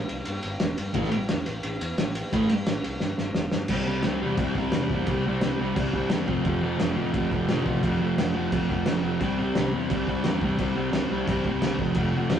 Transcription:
0.09 C2, ride
0.25 G2, ride
0.43 G1, ride
0.60 E1, snare, ride
0.78 G2, ride
0.94 A1 A2 E3 A3, kick, ride
1.04 snare
1.11 A1, ride
1.29 E2, snare, ride
1.46 A1, snare, ride
1.63 A1, ride
1.81 E2, ride
1.98 A1, snare, ride
2.15 ride
2.33 A1 A2 E3 A3, kick, ride
2.49 G2, ride
2.66 A1, snare, ride
2.84 C2, ride
3.00 G2, snare
3.18 G1, snare
3.35 E1, snare
3.52 G2, snare
3.68 C2 C3 G3 C4, kick, crash
3.87 C3 G3 C4
4.03 C2 C3 G3 C4, snare, crash
4.20 E2 C3 G3 C4
4.37 C2 C3 G3 C4, kick, crash
4.55 C2 C3 G3 C4, kick
4.72 E2 C3, snare, crash
4.76 G3 C4
4.90 C3 G3, kick
4.94 C4
5.07 C2 C3 G3 C4, kick, crash
5.26 C3 G3 C4
5.41 C2 C3 G3 C4, snare, crash
5.59 C2 C3 G3 C4
5.75 C2 C3 G3 C4, kick, crash
5.93 C2 C3 G3 C4, kick
6.10 E2 C3 G3 C4, snare, crash
6.27 F1 F2 C3 F3, kick
6.44 F1 F2 C3 F3, kick, crash
6.62 F2 C3 F3
6.79 F1 F2 C3 F3, snare, crash
6.96 A1 F2 C3 F3
7.12 F1 F2 C3 F3, kick, crash
7.30 F1 F2 C3 F3, kick
7.48 F2 C3 F3, snare, crash
7.52 A1
7.66 F2 C3 F3, kick
7.83 F1 F2 C3 F3, kick, crash
8.00 F2 C3 F3
8.18 F1 F2 C3 F3, snare, crash
8.34 F1 F2 C3 F3
8.51 F1 F2 C3 F3, kick, crash
8.69 F1 F2 C3 F3, kick
8.86 F1 F2 C3 F3, snare, crash
9.03 F2 C3 F3
9.20 C2 C3 G3 C4, kick, crash
9.39 C3 G3 C4
9.55 C2 C3 G3 C4, snare, crash
9.73 E2 C3 G3 C4
9.90 C2 C3 G3 C4, kick, crash
10.07 C2 C3 G3 C4, kick
10.24 E2 C3 G3 C4, snare, crash
10.41 C3 G3 C4, kick
10.59 C2 C3 G3 C4, kick, crash
10.76 C3 G3 C4
10.91 C2 C3 G3 C4, snare, crash
11.10 C2 C3 G3 C4
11.28 C2 C3 G3 C4, kick, crash
11.44 C2 C3 G3 C4, kick
11.61 C2 C3 G3 C4, snare, crash
11.79 F1 F2 C3 F3, kick
11.94 F1 F2 C3 F3, kick, crash
12.15 F2 C3 F3
12.30 F1 F2 C3, snare, crash
12.34 F3

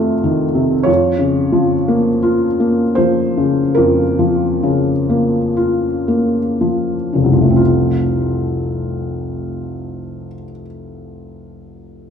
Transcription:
Already playing: F2 C3 D#3 A3 F4 D5
0.24 D#3
0.55 C3
0.83 F2 C#5
1.19 C#3
1.52 F3
1.88 A#3
2.23 F4
2.60 A#3
2.95 F3 C5
3.37 C#3
3.75 F2 A#4
4.19 F3
4.63 C#3
5.10 A#3
5.57 F4
6.08 A#3
6.61 F3
7.13 F1 C#3
7.24 C2
7.33 F3
7.41 A3
7.50 C4
7.56 F4

